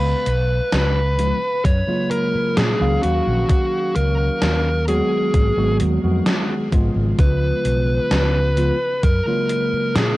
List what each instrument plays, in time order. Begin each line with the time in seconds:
Already playing: fretless electric bass C#2, tine electric piano C#3 G#3 B3 F5, lead electric guitar B4
0.26 fretless electric bass B1, closed hi-hat
0.72 fretless electric bass C#2, snare, closed hi-hat
1.18 tine electric piano C#3 F3 G#3 B3 F4, closed hi-hat
1.65 fretless electric bass F#2, lead electric guitar C#5, kick, closed hi-hat
1.87 tine electric piano C#3 F#3 G#3 A#3 F4
2.11 lead electric guitar A#4, closed hi-hat
2.35 muted fretless electric bass stroke
2.57 fretless electric bass A#2, lead electric guitar G#4, snare, closed hi-hat
2.79 fretless electric bass C#2, tine electric piano D#3 F#3 A#3 C#4 F5
3.03 fretless electric bass D#2, lead electric guitar F#4, closed hi-hat
3.27 fretless electric bass A#1
3.49 lead electric guitar F#4, kick, closed hi-hat
3.95 fretless electric bass C#2, lead electric guitar A#4, closed hi-hat
4.42 fretless electric bass D#2, snare, closed hi-hat
4.87 tine electric piano D#3 F#3 G#3 B3 F#4, lead electric guitar G#4, closed hi-hat
5.34 fretless electric bass G#1, kick, closed hi-hat
5.57 fretless electric bass G#1, tine electric piano D#3 F#3 G#3 B3 F#4
5.80 fretless electric bass D#2, closed hi-hat
6.03 fretless electric bass F2, tine electric piano D#3 F#3 G#3 B3 F#4
6.26 snare, closed hi-hat
6.71 fretless electric bass G#1, tine electric piano C#3 F3 G#3 B3 F4, kick, closed hi-hat
6.96 fretless electric bass G#1
7.19 fretless electric bass C#2, lead electric guitar B4, kick, closed hi-hat
7.65 fretless electric bass B1, closed hi-hat
8.11 fretless electric bass C#2, snare, closed hi-hat
8.56 tine electric piano C#3 F3 G#3 B3 F4, closed hi-hat
9.03 fretless electric bass F#2, lead electric guitar A#4, kick, closed hi-hat
9.26 tine electric piano C#3 F#3 G#3 A#3 F4
9.49 closed hi-hat
9.73 muted fretless electric bass stroke
9.96 fretless electric bass A#2, lead electric guitar G#4, snare, closed hi-hat